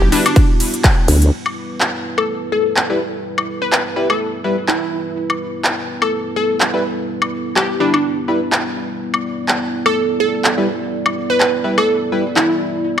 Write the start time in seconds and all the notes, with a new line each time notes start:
Already playing: G3 B3 E4 F#4
0.02 F#1
0.12 G3 D4 E4 B4, open hi-hat, ride
0.26 D4, closed hi-hat, high woodblock
0.36 kick, closed hi-hat, ride
0.60 open hi-hat, ride
0.74 closed hi-hat
0.84 kick, clap, closed hi-hat, ride
1.08 D2, open hi-hat, ride
1.22 closed hi-hat
1.32 G3 B3 E4 B4
1.46 high woodblock
1.80 clap
2.18 A4, high woodblock
2.52 A4
2.77 clap
2.90 G3 E4 B4
3.38 high woodblock
3.62 B4
3.72 B4, clap
3.96 G3 E4 B4
4.10 A4, high woodblock
4.44 G3 E4 B4
4.68 E4, clap
5.30 high woodblock
5.64 clap
6.02 A4, high woodblock
6.36 A4
6.60 clap
6.74 G3 E4 B4
7.22 high woodblock
7.56 G4, clap
7.80 G3 D4 E4 B4
7.94 D4, high woodblock
8.28 G3 E4 B4
8.52 clap
9.00 D5
9.14 high woodblock
9.48 clap
9.86 A4, high woodblock
10.20 A4
10.44 clap
10.58 G3 E4 B4
11.06 high woodblock
11.30 B4
11.40 B4, clap
11.64 G3 E4 B4
11.78 A4, high woodblock
12.12 G3 E4 B4
12.36 E4, clap